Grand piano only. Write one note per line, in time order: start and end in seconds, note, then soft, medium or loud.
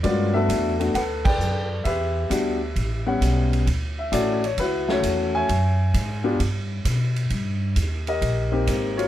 0.03 0.31 G#3 medium
0.03 0.32 A#3 medium
0.03 0.32 C#4 medium
0.03 0.32 F4 medium
0.03 0.33 F#4 medium
0.03 0.34 B4 medium
0.03 0.35 D5 medium
0.34 0.73 A3 medium
0.34 0.74 B3 medium
0.34 0.73 D4 medium
0.34 0.74 F#4 medium
0.34 0.95 A4 medium
0.34 0.95 B4 medium
0.34 0.76 E5 loud
0.79 0.93 A3 medium
0.79 0.93 B3 medium
0.79 0.93 D4 medium
0.79 0.93 F#4 medium
0.95 1.82 A4 medium
0.95 1.25 B4 medium
0.95 1.02 F#5 loud
1.25 1.82 B4 medium
1.25 1.82 D5 medium
1.25 1.67 G5 loud
1.84 3.49 G4 medium
1.84 3.49 B4 medium
1.84 3.48 E5 medium
2.30 2.58 G3 medium
2.30 2.58 B3 medium
2.30 2.58 D4 medium
2.30 2.58 F#4 medium
3.06 3.64 G3 medium
3.06 3.64 B3 medium
3.06 3.64 C#4 medium
3.06 3.64 F#5 medium
3.99 4.12 E5 medium
4.12 4.40 A3 medium
4.12 4.40 C#4 medium
4.12 4.40 E4 medium
4.12 4.40 F#4 medium
4.12 4.44 D5 medium
4.44 4.57 C#5 medium
4.59 4.88 E4 medium
4.59 4.88 F#4 medium
4.59 4.90 B4 medium
4.88 5.46 A3 medium
4.88 5.46 C#4 medium
4.88 5.46 E4 medium
4.88 5.46 F#4 medium
4.88 5.35 C#5 medium
5.35 6.37 C#5 medium
5.35 6.37 E5 medium
5.35 6.36 G#5 loud
6.24 6.37 B3 medium
6.24 6.38 D4 medium
6.24 6.38 F4 medium
6.24 6.38 G4 medium
8.08 8.51 G4 medium
8.08 8.94 A#4 medium
8.08 8.94 D#5 medium
8.51 9.08 A#3 medium
8.51 9.08 C4 medium
8.51 9.08 D#4 medium
8.51 9.08 G4 medium
8.97 9.08 F4 medium
8.97 9.08 A#4 medium
8.97 9.08 C#5 loud